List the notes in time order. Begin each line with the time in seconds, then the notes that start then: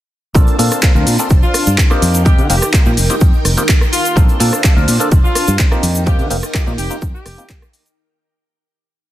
0.35 A#1 A#3 C4 D4 F4 A4 C5 A5, kick, closed hi-hat, cabasa, shaker
0.47 closed hi-hat, shaker
0.59 A#2 A#3 C4 D4 F4 A4, open hi-hat, cabasa
0.71 cross-stick, closed hi-hat, cabasa, shaker
0.82 A#3 C4 D4, kick, clap, closed hi-hat, cabasa, shaker
0.95 D2 A#3 C4 D4 F4 A#4, shaker
1.07 A#2, open hi-hat, cabasa
1.19 A#3 C4 D4 F4 A4, closed hi-hat, cabasa, shaker
1.30 F1, kick, closed hi-hat, cabasa, shaker
1.43 F4, shaker
1.54 cross-stick, open hi-hat, cabasa
1.66 G2, closed hi-hat, cabasa, shaker
1.78 kick, clap, closed hi-hat, cabasa, shaker
1.90 A#3 C4 D#4 F4 G4, cross-stick, shaker
2.02 F2 D#4 A#4 G5, open hi-hat, cabasa
2.14 closed hi-hat, cabasa, shaker
2.25 A#3 C4 D#4 F4 G4, kick, closed hi-hat, cabasa, shaker
2.38 D3, closed hi-hat, shaker
2.50 F1 A#3 C4 D#4 F4 G4, open hi-hat, cabasa
2.62 cross-stick, closed hi-hat, cabasa, shaker
2.73 A#3 C4 D#4 F4 G4, kick, clap, closed hi-hat, cabasa, shaker
2.86 A#2 A#3 C4 D#4 F4 G4, shaker
2.97 F1, open hi-hat, cabasa
3.10 A#3 C4 D#4 F4 G4, closed hi-hat, cabasa, shaker
3.21 F2, kick, closed hi-hat, cabasa, shaker
3.33 shaker
3.45 F1, cross-stick, open hi-hat, cabasa
3.57 A#3 C4 D#4 F4 G4, closed hi-hat, cabasa, shaker
3.68 kick, clap, closed hi-hat, cabasa, shaker
3.81 cross-stick, shaker
3.93 F4, open hi-hat, cabasa
4.05 closed hi-hat, cabasa, shaker
4.16 A#1 A#3 C4 D4 F4 A4 C5 A5, kick, closed hi-hat, cabasa, shaker
4.29 closed hi-hat, shaker
4.40 A#2 A#3 C4 D4 F4 A4, open hi-hat, cabasa
4.53 cross-stick, closed hi-hat, cabasa, shaker
4.64 A#3 C4 D4 F4 A4, kick, clap, closed hi-hat, cabasa, shaker
4.76 D2 A#3 C4 D4 F4 A#4, shaker
4.88 A#2, open hi-hat, cabasa
5.00 A#3 C4 D4 F4 A4, closed hi-hat, cabasa, shaker
5.12 F1, kick, closed hi-hat, cabasa, shaker
5.24 F4, shaker
5.35 cross-stick, open hi-hat, cabasa
5.48 G2, closed hi-hat, cabasa, shaker
5.59 kick, clap, closed hi-hat, cabasa, shaker
5.71 A#3 C4 D#4 F4 G4, cross-stick, shaker
5.82 F2 D#4 A#4 G5, open hi-hat, cabasa
5.95 closed hi-hat, cabasa, shaker
6.06 A#3 C4 D#4 F4 G4, kick, closed hi-hat, cabasa, shaker
6.19 D3, closed hi-hat, shaker
6.30 F1 A#3 C4 D#4 F4 G4, open hi-hat, cabasa
6.43 cross-stick, closed hi-hat, cabasa, shaker
6.54 A#3 C4 D#4 F4 G4, kick, clap, closed hi-hat, cabasa, shaker
6.67 A#2 A#3 C4 D#4 F4 G4, shaker
6.78 F1 G4, open hi-hat, cabasa
6.90 A#3 C4 D#4 F4 G4, closed hi-hat, cabasa, shaker
7.02 F2, kick, closed hi-hat, cabasa, shaker
7.15 G4, shaker
7.26 F1, cross-stick, open hi-hat, cabasa
7.38 A#3 C4 D#4 F4 G4, closed hi-hat, cabasa, shaker
7.49 kick, clap, closed hi-hat, cabasa, shaker
7.62 cross-stick, shaker
7.73 open hi-hat, cabasa
7.86 closed hi-hat, cabasa, shaker